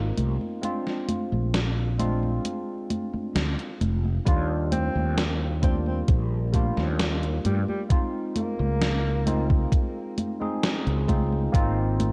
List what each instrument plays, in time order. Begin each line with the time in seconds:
Already playing: fretless electric bass G#1, tine electric piano A#3 C4 D#4 F4
0.17 fretless electric bass C2, closed hi-hat, high conga
0.41 high conga
0.61 tine electric piano G#3 C4 D4 F4, closed hi-hat, high conga
0.87 snare
1.08 closed hi-hat, high conga
1.32 fretless electric bass A#1, high conga
1.54 snare, closed hi-hat, high conga
1.99 tine electric piano G#3 C4 D4 F4, closed hi-hat, high conga
2.23 high conga
2.45 closed hi-hat, high conga
2.90 closed hi-hat, high conga
3.13 muted fretless electric bass stroke, high conga
3.35 fretless electric bass D2, snare, closed hi-hat, high conga
3.59 closed hi-hat
3.81 fretless electric bass F1, closed hi-hat, high conga
4.05 high conga
4.25 fretless electric bass D#2, tine electric piano G3 A#3 D4 F4, kick, closed hi-hat, high conga
4.72 alto saxophone C4, closed hi-hat, high conga
4.95 fretless electric bass D#2, high conga
5.18 snare, closed hi-hat, high conga
5.62 tine electric piano G3 A#3 D4 F4, alto saxophone C4, kick, closed hi-hat, high conga
5.86 alto saxophone C4, high conga
6.08 fretless electric bass A#1, kick, closed hi-hat, high conga
6.53 tine electric piano G3 A#3 D4 F4, kick, closed hi-hat, high conga
6.77 fretless electric bass D#2, snare, high conga
6.99 snare, closed hi-hat, high conga
7.23 closed hi-hat
7.45 fretless electric bass G2, alto saxophone G3, closed hi-hat, high conga
7.68 alto saxophone G3, high conga
7.89 tine electric piano G#3 C4 D#4 F4, kick, closed hi-hat, high conga
8.36 alto saxophone A#3, closed hi-hat, high conga
8.59 fretless electric bass C#2, high conga
8.81 snare, closed hi-hat, high conga
9.26 tine electric piano G#3 C4 D#4 F4, closed hi-hat, high conga
9.50 kick, high conga
9.72 kick, closed hi-hat, high conga
10.18 closed hi-hat, high conga
10.40 tine electric piano G#3 C4 D#4 G#4, high conga
10.63 snare, closed hi-hat, high conga
10.86 fretless electric bass C#2, closed hi-hat
11.08 tine electric piano G#3 C4 D#4 F4, kick, closed hi-hat, high conga
11.33 high conga
11.52 fretless electric bass G#1, tine electric piano A#3 C4 D#4 F4, kick, closed hi-hat, high conga
12.00 closed hi-hat, high conga